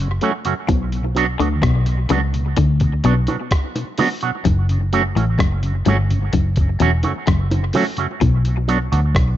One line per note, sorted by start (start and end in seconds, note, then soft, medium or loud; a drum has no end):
0.00 0.18 F#1 medium
0.21 0.31 F#3 medium
0.21 0.31 A3 medium
0.21 0.32 C#4 medium
0.21 0.32 F#4 medium
0.21 closed hi-hat medium
0.45 0.55 F#2 medium
0.45 0.55 C#3 medium
0.45 0.53 F#3 soft
0.45 0.53 A3 medium
0.45 0.53 C#4 medium
0.45 0.53 F#4 medium
0.45 closed hi-hat medium
0.68 1.36 B1 medium
0.68 0.97 B2 medium
0.68 kick loud
0.68 closed hi-hat medium
0.68 high bongo medium
0.92 1.02 B2 medium
0.92 closed hi-hat soft
1.15 1.25 F#3 medium
1.15 1.25 B3 medium
1.15 1.25 D4 medium
1.15 1.26 D4 medium
1.15 1.26 F#4 loud
1.15 closed hi-hat medium
1.40 1.61 D2 medium
1.40 1.54 D3 medium
1.40 1.48 F#3 soft
1.40 1.48 B3 medium
1.40 1.47 D4 soft
1.40 1.47 F#4 medium
1.40 closed hi-hat medium
1.62 2.06 B1 loud
1.62 1.91 B2 medium
1.62 kick loud
1.62 cross-stick loud
1.62 closed hi-hat medium
1.86 1.96 B2 medium
1.86 closed hi-hat soft
2.09 2.54 C#2 medium
2.09 2.38 C#3 medium
2.09 2.19 F#3 medium
2.09 2.19 B3 medium
2.09 2.20 D4 medium
2.09 2.20 F#4 medium
2.09 closed hi-hat medium
2.09 low bongo medium
2.33 2.43 B2 soft
2.33 closed hi-hat medium
2.57 3.01 D2 medium
2.57 2.86 D3 medium
2.57 kick loud
2.57 closed hi-hat medium
2.57 high bongo medium
2.80 2.90 B2 medium
2.80 kick loud
2.80 closed hi-hat medium
3.04 3.26 B1 loud
3.04 3.19 B2 medium
3.04 3.14 F#3 medium
3.04 3.13 F#3 medium
3.04 3.14 B3 medium
3.04 3.14 D4 medium
3.04 3.14 F#4 medium
3.04 closed hi-hat medium
3.27 3.37 B2 medium
3.27 3.36 F#3 soft
3.27 3.36 B3 soft
3.27 3.35 D4 medium
3.27 3.35 F#4 medium
3.27 closed hi-hat medium
3.27 high bongo medium
3.51 kick loud
3.51 cross-stick loud
3.51 closed hi-hat medium
3.75 3.84 B2 medium
3.75 closed hi-hat medium
3.75 high bongo medium
3.98 4.07 F#3 medium
3.98 4.08 F#3 medium
3.98 4.08 B3 medium
3.98 4.08 D4 medium
3.98 4.08 F#4 loud
3.98 open hi-hat medium
3.98 low bongo medium
4.21 4.32 B2 medium
4.21 4.30 F#3 medium
4.21 4.30 B3 medium
4.21 4.30 D4 medium
4.21 4.29 F#4 medium
4.21 closed hi-hat medium
4.45 5.12 F#1 medium
4.45 4.73 F#2 medium
4.45 kick loud
4.45 closed hi-hat medium
4.45 high bongo medium
4.69 4.79 F#2 medium
4.69 4.78 C#3 medium
4.69 closed hi-hat medium
4.93 5.02 F#3 medium
4.93 5.02 A3 medium
4.93 5.02 C#4 medium
4.93 5.02 F#4 medium
4.93 closed hi-hat medium
5.16 5.38 A1 medium
5.16 5.30 A2 medium
5.16 5.24 F#3 soft
5.16 5.24 A3 soft
5.16 5.24 C#4 medium
5.16 5.24 F#4 soft
5.16 closed hi-hat medium
5.39 5.83 F#1 medium
5.39 5.67 F#2 medium
5.39 kick loud
5.39 cross-stick loud
5.39 closed hi-hat medium
5.63 5.72 F#2 medium
5.63 5.73 C#3 medium
5.63 closed hi-hat medium
5.85 6.30 G1 medium
5.85 6.14 G2 medium
5.85 5.96 F#3 medium
5.85 5.96 A3 medium
5.85 5.96 C#4 medium
5.85 5.96 C#4 loud
5.85 5.96 F#4 medium
5.85 closed hi-hat medium
5.85 low bongo medium
6.10 6.20 F#2 medium
6.10 6.20 C#3 medium
6.10 closed hi-hat medium
6.33 6.77 F#1 medium
6.33 6.62 F#2 medium
6.33 kick loud
6.33 closed hi-hat medium
6.33 high bongo medium
6.56 6.67 F#2 medium
6.56 6.67 C#3 medium
6.56 kick loud
6.56 closed hi-hat medium
6.80 7.02 E1 medium
6.80 6.94 E2 medium
6.80 6.90 F#3 medium
6.80 6.90 A3 medium
6.80 6.90 C#4 medium
6.80 6.90 C#4 loud
6.80 6.90 F#4 loud
6.80 closed hi-hat medium
7.03 7.14 F#2 medium
7.03 7.14 C#3 medium
7.03 7.12 F#3 soft
7.03 7.12 A3 soft
7.03 7.11 C#4 medium
7.03 7.11 F#4 medium
7.03 closed hi-hat medium
7.03 high bongo medium
7.27 7.71 F#1 medium
7.27 7.55 F#2 medium
7.27 kick loud
7.27 cross-stick medium
7.27 closed hi-hat medium
7.51 7.60 F#2 medium
7.51 7.60 C#3 medium
7.51 closed hi-hat medium
7.51 high bongo medium
7.73 7.84 F#3 medium
7.73 7.84 A3 medium
7.73 7.84 C#4 medium
7.73 7.84 F#4 medium
7.73 open hi-hat medium
7.73 low bongo medium
7.97 8.07 F#2 medium
7.97 8.07 C#3 medium
7.97 8.06 F#3 medium
7.97 8.06 A3 medium
7.97 8.06 C#4 medium
7.97 8.05 F#4 medium
7.97 closed hi-hat medium
8.21 8.88 B1 medium
8.21 8.49 B2 medium
8.21 kick loud
8.21 closed hi-hat medium
8.21 high bongo medium
8.45 8.55 B2 medium
8.45 closed hi-hat soft
8.68 8.78 F#3 medium
8.68 8.77 F#3 medium
8.68 8.78 B3 medium
8.68 8.78 D4 medium
8.68 8.78 F#4 medium
8.68 closed hi-hat medium
8.92 9.14 D2 medium
8.92 9.00 F#3 medium
8.92 9.00 B3 soft
8.92 8.99 D4 medium
8.92 8.99 F#4 medium
8.92 closed hi-hat medium
9.15 9.37 B1 loud
9.15 kick loud
9.15 cross-stick loud
9.15 closed hi-hat medium